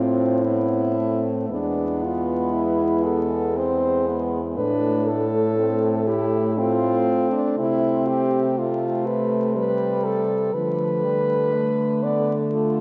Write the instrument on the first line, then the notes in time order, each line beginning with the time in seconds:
french horn
Already playing: A2 C4 F4
0.44 B3 E4
0.97 A3
1.50 E2 G#3 B3 D4
2.03 F4
2.53 E4
3.05 A4
3.56 C4 C5
4.07 B3
4.56 A2 A3 D4 B4
5.08 A4
5.56 C4
6.07 E4 G4
6.57 C4 F4
7.32 D4
7.58 C3 C4 E4
8.08 G4
8.58 A3 F4
9.06 B4
9.55 G3 B4
10.04 A4
10.54 D3 F3 A3 B4
11.04 G3
11.54 A3
12.03 B3 D5
12.54 A3 F4